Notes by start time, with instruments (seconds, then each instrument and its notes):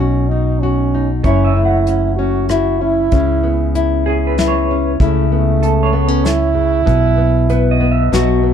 Already playing: fingered electric bass B1, nylon-string guitar B2 C#4 D#4, french horn C#4
0.00 nylon-string guitar F#4
0.28 french horn D#4, nylon-string guitar D#4
0.60 french horn C#4, nylon-string guitar F#4
0.95 nylon-string guitar D#4
1.24 fingered electric bass F#1, nylon-string guitar F#2 E4, french horn C#4, clean electric guitar C#5, kick, closed hi-hat
1.44 clean electric guitar E5
1.54 nylon-string guitar A3, french horn E4
1.65 clean electric guitar F#5
1.87 nylon-string guitar C#4, closed hi-hat
2.16 nylon-string guitar C#4, french horn F#4
2.49 nylon-string guitar E4, french horn F#4, cross-stick, closed hi-hat
2.81 nylon-string guitar C#4, french horn E4
3.11 fingered electric bass C#2, nylon-string guitar C#3 C#4, kick, closed hi-hat
3.43 nylon-string guitar B3
3.75 nylon-string guitar E4, closed hi-hat
4.06 nylon-string guitar C#4, clean electric guitar G#4
4.27 clean electric guitar B4
4.38 nylon-string guitar E4, snare, closed hi-hat
4.48 clean electric guitar C#5
4.71 nylon-string guitar C#4
5.00 fingered electric bass C#2, nylon-string guitar C#3 E4, french horn A3, kick, closed hi-hat
5.30 french horn A3, nylon-string guitar B3
5.63 clean electric guitar A4, closed hi-hat
5.83 clean electric guitar C#5
5.93 nylon-string guitar B3, french horn B3
6.08 nylon-string guitar C#4
6.25 french horn E4, snare, closed hi-hat
6.55 nylon-string guitar C#3
6.85 fingered electric bass B1, nylon-string guitar B2 B3, kick, closed hi-hat
7.18 nylon-string guitar B3
7.49 nylon-string guitar B3, clean electric guitar B4, closed hi-hat
7.71 clean electric guitar D#5
7.80 nylon-string guitar B3
7.91 clean electric guitar E5
8.12 fingered electric bass B1, nylon-string guitar B2 F#3 B3 F#4, snare, closed hi-hat
8.43 nylon-string guitar B3